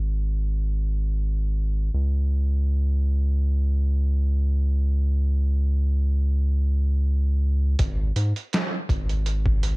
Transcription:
0.00 1.90 G#1 medium
1.94 7.76 C#2 medium
7.79 8.12 G#1 loud
7.79 kick loud
7.79 closed hi-hat medium
8.16 8.33 G#2 medium
8.16 closed hi-hat medium
8.36 closed hi-hat soft
8.53 snare loud
8.53 closed hi-hat medium
8.89 9.77 G#1 medium
8.89 kick loud
8.89 closed hi-hat medium
9.09 closed hi-hat soft
9.26 closed hi-hat medium
9.46 kick loud
9.63 closed hi-hat medium

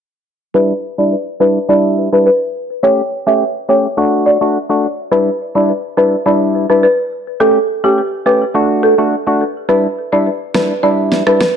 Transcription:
0.54 0.73 G3 medium
0.54 0.73 D4 medium
0.54 0.73 E4 loud
0.54 0.79 B4 medium
0.98 1.15 G3 medium
0.98 1.15 D4 medium
0.98 1.15 E4 medium
0.98 1.10 D5 medium
1.40 1.58 G3 medium
1.40 1.59 D4 medium
1.40 1.59 E4 medium
1.40 1.53 B4 medium
1.69 2.09 G3 medium
1.69 2.09 D4 medium
1.69 2.09 E4 loud
1.69 1.82 D5 medium
2.12 2.29 G3 medium
2.12 2.30 D4 medium
2.12 2.30 E4 medium
2.12 2.24 B4 medium
2.26 2.67 B4 medium
2.83 3.01 A3 medium
2.83 3.01 C#4 medium
2.83 3.02 G4 loud
2.83 3.08 C#5 loud
3.27 3.44 A3 medium
3.27 3.44 C#4 medium
3.27 3.44 G4 medium
3.27 3.38 E5 medium
3.69 3.87 A3 medium
3.69 3.87 C#4 medium
3.69 3.87 G4 medium
3.69 3.82 C#5 medium
3.97 4.37 A3 medium
3.97 4.37 D4 medium
3.97 4.38 F#4 loud
4.26 4.39 D5 medium
4.41 4.58 A3 medium
4.41 4.58 D4 medium
4.41 4.58 F#4 medium
4.69 4.86 A3 medium
4.69 4.87 D4 medium
4.69 4.87 F#4 medium
5.11 5.30 G3 medium
5.11 5.30 D4 medium
5.11 5.30 E4 loud
5.11 5.36 B4 medium
5.55 5.72 G3 medium
5.55 5.72 D4 medium
5.55 5.72 E4 medium
5.55 5.67 D5 medium
5.97 6.16 G3 medium
5.97 6.16 D4 medium
5.97 6.16 E4 medium
5.97 6.10 B4 medium
6.26 6.66 G3 medium
6.26 6.66 D4 medium
6.26 6.66 E4 loud
6.26 6.39 D5 medium
6.69 6.87 G3 medium
6.69 6.87 D4 medium
6.69 6.87 E4 medium
6.69 6.81 B4 medium
6.83 7.24 B4 medium
7.40 7.58 A3 medium
7.40 7.59 C#4 medium
7.40 7.59 G4 loud
7.40 7.65 A4 loud
7.84 8.01 A3 medium
7.84 8.01 C#4 medium
7.84 7.95 G4 medium
7.84 8.01 G4 medium
8.26 8.44 A3 medium
8.26 8.44 C#4 medium
8.26 8.44 G4 medium
8.26 8.39 B4 medium
8.54 8.95 A3 medium
8.54 8.95 D4 medium
8.54 8.95 F#4 loud
8.83 8.96 A4 medium
8.98 9.15 A3 medium
8.98 9.15 D4 medium
8.98 9.15 F#4 medium
9.27 9.44 A3 medium
9.27 9.44 D4 medium
9.27 9.44 F#4 medium
9.69 9.87 G3 medium
9.69 9.87 D4 medium
9.69 9.87 E4 medium
9.69 9.93 B4 medium
10.12 10.29 G3 medium
10.12 10.30 D4 medium
10.12 10.30 E4 medium
10.12 10.24 D5 medium
10.54 10.73 G3 medium
10.54 10.73 D4 medium
10.54 10.73 E4 medium
10.54 10.68 B4 medium
10.54 cross-stick medium
10.54 snare loud
10.83 11.23 G3 medium
10.83 11.23 D4 medium
10.83 11.23 E4 loud
10.83 10.96 D5 medium
11.12 snare medium
11.27 11.44 G3 medium
11.27 11.44 D4 medium
11.27 11.44 E4 medium
11.27 11.38 B4 medium
11.27 cross-stick medium
11.40 11.57 B4 medium
11.40 cross-stick medium
11.40 snare loud

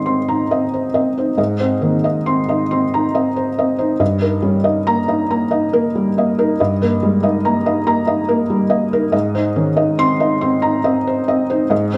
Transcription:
0.00 1.35 G#2 medium
0.00 1.41 D#3 soft
0.00 0.06 C4 soft
0.00 1.40 C#4 soft
0.00 0.28 D#4 soft
0.00 0.74 C5 soft
0.00 0.51 D#5 medium
0.00 0.06 C6 medium
0.06 0.41 C4 soft
0.06 0.41 C6 medium
0.28 0.64 D#4 soft
0.28 0.64 A#5 soft
0.51 0.87 C4 soft
0.51 0.86 D#5 medium
0.74 1.08 C5 soft
0.94 1.30 C4 soft
0.94 1.30 D#5 medium
1.18 1.52 D#4 soft
1.18 1.53 C5 soft
1.37 3.96 G#2 medium
1.37 1.74 D#5 medium
1.60 1.96 C4 soft
1.60 1.95 C5 medium
1.82 2.17 D#3 soft
1.82 2.04 A#3 soft
2.04 2.40 D#4 soft
2.04 2.39 D#5 medium
2.26 2.61 C4 soft
2.26 2.61 C6 medium
2.48 2.83 D#4 soft
2.48 2.84 D#5 medium
2.71 3.06 C4 soft
2.71 3.05 C6 medium
2.94 3.28 D#4 soft
2.94 3.28 A#5 medium
3.15 3.49 C4 medium
3.15 3.49 D#5 medium
3.36 3.71 C5 medium
3.58 3.92 C4 medium
3.58 3.93 D#5 medium
3.78 4.00 D#4 medium
3.78 4.00 C5 medium
4.00 6.55 G2 medium
4.00 4.35 D#5 medium
4.21 4.56 D#4 soft
4.21 4.56 A#4 medium
4.42 4.77 G3 medium
4.42 4.64 C#4 soft
4.64 4.99 D#4 medium
4.64 4.99 D#5 medium
4.87 5.21 A#3 medium
4.87 5.21 A#5 medium
5.08 5.43 D#4 medium
5.08 5.43 D#5 medium
5.30 5.65 A#3 medium
5.30 5.65 A#5 medium
5.51 5.86 D#4 medium
5.51 5.86 D#5 medium
5.73 6.08 A#3 medium
5.73 6.08 A#4 medium
5.95 6.29 G3 medium
6.18 6.51 A#3 medium
6.18 6.52 D#5 medium
6.38 6.73 D#4 medium
6.38 6.73 A#4 medium
6.60 9.10 G2 medium
6.60 6.94 D#5 medium
6.82 7.16 A#3 medium
6.82 7.16 A#4 medium
7.02 7.36 G3 medium
7.02 7.23 G#3 soft
7.23 7.57 D#4 medium
7.23 7.57 D#5 medium
7.45 7.79 A#3 medium
7.45 7.78 A#5 medium
7.66 7.99 D#4 medium
7.66 7.99 D#5 medium
7.86 8.20 A#3 medium
7.86 8.20 A#5 medium
8.07 8.41 D#4 medium
8.07 8.41 D#5 medium
8.29 8.62 A#3 medium
8.29 8.62 A#4 medium
8.50 8.84 G3 medium
8.70 9.04 A#3 medium
8.70 9.04 D#5 medium
8.93 9.14 D#4 medium
8.93 9.14 A#4 medium
9.12 11.67 G#2 medium
9.12 9.47 D#5 medium
9.35 9.69 D#4 medium
9.35 9.69 C5 medium
9.56 9.90 D#3 medium
9.56 9.77 C#4 medium
9.77 10.12 D#4 medium
9.77 10.11 D#5 medium
9.98 10.33 C4 medium
9.98 10.34 C6 medium
10.20 10.55 D#4 medium
10.20 10.55 D#5 medium
10.41 10.77 C4 medium
10.41 10.77 C6 medium
10.62 10.98 D#4 medium
10.62 10.98 A#5 medium
10.84 11.19 C4 medium
10.84 11.19 D#5 medium
11.07 11.42 C5 medium
11.28 11.63 C4 medium
11.28 11.63 D#5 medium
11.50 11.84 D#4 medium
11.50 11.84 C5 medium
11.70 11.97 G#2 medium
11.70 11.97 D#5 medium
11.93 11.97 C4 medium
11.93 11.97 C5 medium

